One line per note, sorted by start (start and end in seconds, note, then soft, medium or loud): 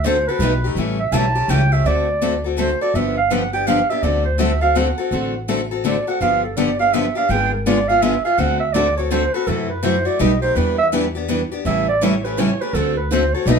0.00 0.26 D2 medium
0.05 0.16 D3 medium
0.05 0.16 A3 medium
0.05 0.16 C4 loud
0.05 0.16 F#4 medium
0.05 0.16 A4 loud
0.05 0.26 C5 medium
0.27 0.41 C4 soft
0.27 0.41 F#4 medium
0.27 0.40 A4 medium
0.27 0.73 B4 medium
0.39 0.68 B1 medium
0.39 0.52 B2 medium
0.39 0.52 G3 loud
0.39 0.52 A3 medium
0.39 0.52 D#4 medium
0.39 0.52 G4 medium
0.39 0.51 B4 loud
0.64 0.77 A3 medium
0.64 0.77 D#4 medium
0.64 0.76 G4 medium
0.75 1.05 A1 medium
0.75 0.98 C#3 medium
0.75 0.98 E3 medium
0.75 0.97 G3 medium
0.75 0.98 A3 medium
0.75 0.98 C#4 medium
0.75 0.98 E4 medium
0.75 0.98 G4 medium
0.75 0.98 A4 medium
0.99 1.15 E5 medium
1.12 1.43 B1 medium
1.12 1.24 C#3 loud
1.12 1.24 E3 medium
1.12 1.23 G3 loud
1.12 1.24 A3 loud
1.12 1.24 C#4 loud
1.12 1.24 E4 loud
1.12 1.24 G4 loud
1.12 1.24 A4 loud
1.12 1.51 A5 medium
1.35 1.49 A3 soft
1.35 1.49 C#4 medium
1.35 1.48 G4 medium
1.48 1.79 C#2 medium
1.48 1.60 C#3 medium
1.48 1.60 E3 medium
1.48 1.60 G3 medium
1.48 1.60 A3 medium
1.48 1.61 C#4 loud
1.48 1.60 E4 medium
1.48 1.61 G4 loud
1.48 1.60 A4 medium
1.48 1.74 G5 medium
1.72 1.85 A3 medium
1.72 1.85 C#4 medium
1.72 1.85 G4 medium
1.72 1.88 E5 medium
1.84 2.72 D2 medium
1.84 2.06 D3 medium
1.84 2.07 A3 medium
1.84 2.07 C4 medium
1.84 2.07 F#4 medium
1.84 2.07 A4 medium
1.84 2.45 D5 medium
2.21 2.33 D3 medium
2.21 2.33 A3 medium
2.21 2.33 C4 medium
2.21 2.33 F#4 loud
2.21 2.33 A4 loud
2.44 2.57 C4 soft
2.44 2.57 F#4 soft
2.44 2.57 A4 medium
2.57 2.68 D3 medium
2.57 2.69 A3 medium
2.57 2.69 C4 medium
2.57 2.69 F#4 medium
2.57 2.69 A4 medium
2.57 2.79 C5 medium
2.81 2.95 C4 soft
2.81 2.95 F#4 medium
2.81 2.94 A4 medium
2.81 2.96 D5 medium
2.94 3.81 G1 medium
2.94 3.16 D3 medium
2.94 3.16 F3 medium
2.94 3.16 B3 medium
2.94 3.16 D4 medium
2.94 3.16 G4 medium
2.94 3.17 E5 medium
3.17 3.33 F5 medium
3.30 3.42 D3 medium
3.30 3.42 F3 medium
3.30 3.42 B3 medium
3.30 3.42 D4 medium
3.30 3.42 G4 medium
3.30 3.52 F#5 medium
3.53 3.66 B3 soft
3.53 3.67 D4 medium
3.53 3.66 G4 medium
3.53 3.68 G5 medium
3.67 3.78 D3 medium
3.67 3.78 F3 medium
3.67 3.78 B3 medium
3.67 3.79 D4 medium
3.67 3.79 G4 loud
3.67 3.89 F5 medium
3.89 4.03 B3 medium
3.89 4.03 D4 soft
3.89 4.03 G4 medium
3.89 4.04 E5 medium
4.02 4.90 D2 medium
4.02 4.24 D3 medium
4.02 4.24 A3 medium
4.02 4.24 C4 medium
4.02 4.24 F#4 medium
4.02 4.25 A4 medium
4.02 4.24 D5 medium
4.25 4.41 C5 medium
4.38 4.50 D3 medium
4.38 4.50 A3 loud
4.38 4.50 C4 medium
4.38 4.50 F#4 loud
4.38 4.50 A4 medium
4.38 4.61 E5 medium
4.61 4.75 C4 soft
4.61 4.75 F#4 medium
4.61 4.75 A4 medium
4.61 4.78 F5 medium
4.75 4.87 D3 medium
4.75 4.87 A3 medium
4.75 4.87 C4 medium
4.75 4.87 F#4 medium
4.75 4.87 A4 loud
4.75 5.49 F#5 medium
4.98 5.11 C4 soft
4.98 5.11 F#4 medium
4.98 5.11 A4 medium
5.11 5.98 A1 medium
5.11 5.33 D3 medium
5.11 5.33 A3 medium
5.11 5.33 C4 medium
5.11 5.33 F#4 medium
5.11 5.33 A4 medium
5.48 5.59 D3 medium
5.48 5.60 A3 medium
5.48 5.60 C4 medium
5.48 5.60 F#4 medium
5.48 5.60 A4 loud
5.71 5.83 C4 soft
5.71 5.83 F#4 medium
5.71 5.84 A4 medium
5.84 5.95 D3 medium
5.84 5.96 A3 medium
5.84 5.96 C4 medium
5.84 5.96 F#4 medium
5.84 5.96 A4 medium
5.84 6.06 D5 medium
6.07 6.21 C4 medium
6.07 6.21 F#4 medium
6.07 6.20 A4 medium
6.07 6.23 F#5 medium
6.21 7.08 G1 medium
6.21 6.42 D3 medium
6.21 6.42 F3 medium
6.21 6.43 B3 medium
6.21 6.43 D4 medium
6.21 6.43 G4 medium
6.21 6.43 F5 medium
6.43 6.59 A4 medium
6.57 6.68 D3 medium
6.57 6.68 F3 medium
6.57 6.68 B3 loud
6.57 6.69 D4 medium
6.57 6.69 G4 medium
6.57 6.79 D5 medium
6.79 6.93 B3 soft
6.79 6.93 D4 soft
6.79 6.93 G4 medium
6.79 6.95 F5 medium
6.93 7.04 D3 medium
6.93 7.05 F3 medium
6.93 7.05 B3 medium
6.93 7.05 D4 medium
6.93 7.05 G4 medium
6.93 7.16 E5 medium
7.15 7.28 B3 medium
7.15 7.29 D4 medium
7.15 7.29 G4 medium
7.15 7.31 F5 medium
7.29 8.16 G#1 medium
7.29 7.50 D3 medium
7.29 7.51 G#3 medium
7.29 7.51 B3 medium
7.29 7.51 F4 medium
7.29 7.51 G#4 medium
7.29 7.52 G5 loud
7.53 7.68 A#4 soft
7.66 7.77 D3 medium
7.66 7.77 G#3 medium
7.66 7.78 B3 medium
7.66 7.78 F4 medium
7.66 7.78 G#4 loud
7.66 7.90 D5 medium
7.88 8.01 B3 soft
7.88 8.01 F4 medium
7.88 8.02 G#4 medium
7.88 8.03 F5 loud
8.02 8.14 D3 medium
8.02 8.13 G#3 loud
8.02 8.14 B3 medium
8.02 8.14 F4 medium
8.02 8.14 G#4 medium
8.02 8.24 E5 medium
8.25 8.39 B3 soft
8.25 8.38 F4 soft
8.25 8.38 G#4 medium
8.25 8.40 F5 medium
8.38 9.25 D2 medium
8.38 8.60 D3 medium
8.38 8.60 A3 medium
8.38 8.60 C4 medium
8.38 8.60 F#4 medium
8.38 8.60 A4 medium
8.38 8.59 F#5 loud
8.60 8.74 E5 medium
8.73 8.86 D3 medium
8.73 8.86 A3 medium
8.73 8.86 C4 medium
8.73 8.86 F#4 loud
8.73 8.87 A4 medium
8.73 8.96 D5 medium
8.97 9.11 C4 medium
8.97 9.11 F#4 medium
8.97 9.11 A4 medium
8.97 9.14 C#5 medium
9.11 9.22 D3 medium
9.11 9.22 A3 medium
9.11 9.23 C4 medium
9.11 9.23 F#4 medium
9.11 9.23 A4 medium
9.11 9.34 C5 medium
9.33 9.48 C4 soft
9.33 9.48 F#4 medium
9.33 9.47 A4 medium
9.33 9.49 B4 medium
9.47 10.05 F#2 medium
9.47 9.69 C3 medium
9.47 9.69 E3 medium
9.47 9.68 F#3 medium
9.47 9.69 A3 medium
9.47 9.68 C4 medium
9.47 9.69 E4 medium
9.47 9.69 F#4 medium
9.47 9.69 A4 medium
9.69 9.85 B4 medium
9.83 9.94 C3 loud
9.83 9.95 E3 medium
9.83 9.94 F#3 medium
9.83 9.95 A3 medium
9.83 9.95 C4 medium
9.83 9.95 E4 medium
9.83 9.95 F#4 medium
9.83 9.95 A4 medium
9.83 10.07 C5 medium
10.05 10.19 A3 medium
10.05 10.19 E4 medium
10.05 10.19 F#4 medium
10.05 10.21 D5 medium
10.19 10.49 B1 medium
10.19 10.31 B2 medium
10.19 10.31 G3 medium
10.19 10.31 A3 medium
10.19 10.31 D#4 medium
10.19 10.31 G4 medium
10.19 10.31 B4 medium
10.19 10.41 D#5 medium
10.42 10.56 A3 soft
10.42 10.56 D#4 medium
10.42 10.55 G4 medium
10.42 10.57 C5 medium
10.55 11.43 E2 medium
10.55 10.78 E3 medium
10.55 10.77 G3 medium
10.55 10.77 B3 medium
10.55 10.78 D4 medium
10.55 10.77 E4 medium
10.55 10.78 G4 medium
10.55 10.78 B4 medium
10.55 10.77 B4 medium
10.78 10.87 E5 loud
10.92 11.04 E3 medium
10.92 11.03 G3 medium
10.92 11.04 B3 medium
10.92 11.04 D4 loud
10.92 11.04 E4 medium
10.92 11.04 G4 medium
10.92 11.04 B4 loud
11.15 11.28 B3 soft
11.15 11.28 D4 medium
11.15 11.28 G4 medium
11.28 11.40 E3 medium
11.28 11.40 G3 medium
11.28 11.40 B3 medium
11.28 11.40 D4 medium
11.28 11.40 E4 medium
11.28 11.40 G4 loud
11.28 11.40 B4 medium
11.52 11.65 B3 medium
11.52 11.65 D4 medium
11.52 11.64 G4 medium
11.65 12.52 A1 medium
11.65 11.86 C#3 medium
11.65 11.87 E3 medium
11.65 11.86 G3 medium
11.65 11.87 A3 medium
11.65 11.87 C#4 medium
11.65 11.86 E4 medium
11.65 11.87 G4 medium
11.65 11.87 A4 medium
11.65 11.87 E5 medium
11.88 12.04 D5 medium
12.02 12.13 C#3 medium
12.02 12.13 E3 loud
12.02 12.13 G3 medium
12.02 12.13 A3 medium
12.02 12.13 C#4 loud
12.02 12.13 E4 loud
12.02 12.13 G4 loud
12.02 12.13 A4 loud
12.02 12.26 C#5 medium
12.24 12.38 A3 soft
12.24 12.38 C#4 medium
12.24 12.37 G4 medium
12.24 12.40 B4 medium
12.38 12.49 C#3 medium
12.38 12.49 E3 medium
12.38 12.49 G3 medium
12.38 12.49 A3 medium
12.38 12.50 C#4 loud
12.38 12.49 E4 medium
12.38 12.50 G4 medium
12.38 12.49 A4 medium
12.38 12.63 C#5 medium
12.61 12.74 A3 soft
12.61 12.74 C#4 medium
12.61 12.74 G4 medium
12.61 12.76 B4 medium
12.73 13.31 D2 loud
12.73 12.96 D3 medium
12.73 12.96 A3 medium
12.73 12.96 C4 medium
12.73 12.96 F#4 medium
12.73 12.96 A4 medium
12.97 13.13 B4 medium
13.11 13.22 D3 medium
13.11 13.22 A3 loud
13.11 13.22 C4 loud
13.11 13.23 F#4 medium
13.11 13.23 A4 loud
13.11 13.35 C5 medium
13.33 13.47 C4 soft
13.33 13.47 F#4 medium
13.33 13.47 A4 medium
13.33 13.49 C#5 medium
13.46 13.59 B1 loud
13.46 13.58 B2 medium
13.46 13.58 G3 medium
13.46 13.58 A3 medium
13.46 13.59 D#4 loud
13.46 13.59 G4 loud
13.46 13.58 B4 loud
13.46 13.59 D#5 medium